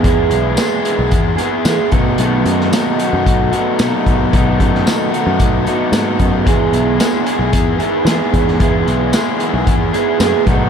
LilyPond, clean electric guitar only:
\new Staff \with { instrumentName = "Clean electric guitar" } { \time 4/4 \key e \major \tempo 4 = 112 <e, b, dis gis b gis'>4 <gis b gis'>8 <dis gis b gis'>4 <dis gis b gis'>8 <e, b, dis gis b gis'>8 <b, dis a b fis'>8 | <b, dis a b fis'>4 <dis a b fis'>8 <a b fis'>4 <a b fis'>8 <b, dis a b fis'>4 | <b, dis a b fis'>4 <dis a b fis'>8 <a b fis'>4 <a b fis'>8 <b, dis a b fis'>4 | <e, b, gis b gis'>4 <gis b gis'>8 <dis gis b gis'>4 <dis gis b gis'>8 <e, b, dis gis b gis'>4 |
<e, b, gis b gis'>4 <gis b gis'>8 <dis gis b gis'>4 <dis gis b gis'>8 <e, b, dis gis b gis'>8 <b, dis a b fis'>8 | }